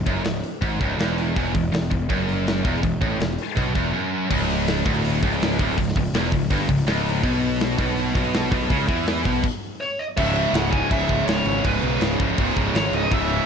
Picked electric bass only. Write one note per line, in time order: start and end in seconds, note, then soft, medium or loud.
0.07 0.23 F#1 loud
0.24 0.42 C#1 medium
0.62 0.79 G#1 loud
0.81 0.98 C#1 medium
0.98 1.33 E1 medium
1.36 1.53 E1 medium
1.55 1.72 E1 medium
1.72 1.90 E1 medium
1.91 2.08 E1 medium
2.10 2.61 F#1 medium
2.65 2.82 E1 medium
2.83 3.00 E1 medium
3.01 3.19 A1 loud
3.19 3.37 E1 medium
3.57 3.74 B1 loud
3.75 3.93 E1 medium
4.31 4.82 C#1 loud
4.86 5.20 D1 loud
5.23 5.57 C#1 loud
5.59 5.76 D1 loud
5.78 5.95 C#1 medium
5.96 6.13 C#1 medium
6.14 6.31 E1 loud
6.32 6.49 C#1 medium
6.50 6.68 G1 loud
6.69 6.86 C#1 medium
6.87 7.21 C#1 medium
7.23 7.75 B1 loud
7.78 8.13 B1 medium
8.15 8.49 B1 loud
8.52 8.69 B1 medium
8.70 8.87 C#2 loud
8.88 9.23 E2 medium
9.25 9.42 B1 loud
10.18 10.45 C#1 medium
10.54 10.81 C#1 loud
10.91 11.04 C#1 loud
11.09 11.23 C#1 medium
11.27 11.41 C#1 medium
11.45 11.59 G#1 medium
11.65 11.78 C#1 loud
11.83 11.97 B1 loud
12.01 12.15 C#1 loud
12.20 12.33 C#1 loud
12.38 12.52 C#1 loud
12.57 12.70 C#1 loud
12.74 12.88 G#1 loud
12.92 13.06 C#1 medium
13.11 13.39 C#1 loud